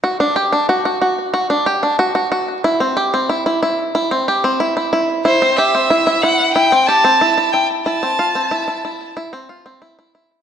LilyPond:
<<
  \new Staff \with { instrumentName = "Violin" } { \time 4/4 \key c \lydian \tempo 4 = 92 r1 | r1 | c''8 e''4 fis''8 g''8 a''4 g''8 | a''2 r2 | }
  \new Staff \with { instrumentName = "Five-string banjo" } { \time 4/4 \key c \lydian fis'16 d'16 g'16 d'16 fis'16 fis'16 fis'8 fis'16 d'16 g'16 d'16 fis'16 fis'16 fis'8 | e'16 c'16 g'16 c'16 e'16 e'16 e'8 e'16 c'16 g'16 c'16 e'16 e'16 e'8 | e'16 c'16 g'16 c'16 e'16 e'16 e'8 e'16 c'16 g'16 c'16 e'16 e'16 e'8 | e'16 c'16 f'16 c'16 e'16 e'16 e'8 e'16 c'16 f'16 c'16 e'16 e'16 e'8 | }
>>